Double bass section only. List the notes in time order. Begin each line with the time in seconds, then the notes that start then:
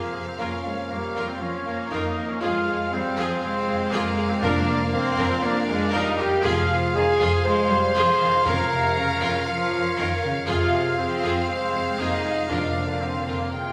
0.13 F2
0.39 F2
0.65 F2
0.90 F2
1.16 F2
1.67 F2
1.92 F2
2.18 F2
2.42 F2
2.68 F2
2.93 F2
3.17 F2
3.69 F2
3.93 F2
4.19 F2
4.44 F2
4.68 F2
4.94 F2
5.19 F2
5.70 F2
5.95 F2
6.19 F2
6.45 F2
6.70 F2
6.95 F2
7.20 F2
7.70 F2
7.96 F2
8.21 F2
8.46 F2
8.72 F2
8.96 F2
9.21 F2
9.72 F2
9.97 F2
10.23 F2
10.47 F2
10.73 F2
10.98 F2
11.23 F2
11.74 F2
11.99 F2
12.25 F2
12.50 F2
12.76 F2
13.02 F2
13.28 F2